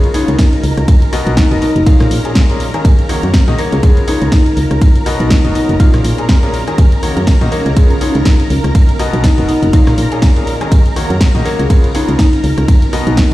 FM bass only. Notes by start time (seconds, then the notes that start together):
0.28 C#2
0.64 C#2
0.77 C#2
1.27 B1
1.51 F#1
1.76 F#1
2.00 A#1
2.11 A#1
2.85 D#2
3.23 F#2
3.48 A#1
3.73 C#2
4.22 C#2
4.57 C#2
4.71 C#2
5.20 B1
5.45 F#1
5.69 F#1
5.94 A#1
6.04 A#1
6.78 D#2
7.17 F#2
7.41 A#1
7.66 C#2
8.15 C#2
8.50 C#2
8.64 C#2
9.13 B1
9.38 F#1
9.63 F#1
9.87 A#1
9.98 A#1
10.72 D#2
11.10 F#2
11.35 A#1
11.59 C#2
12.09 C#2
12.44 C#2
12.58 C#2
13.07 B1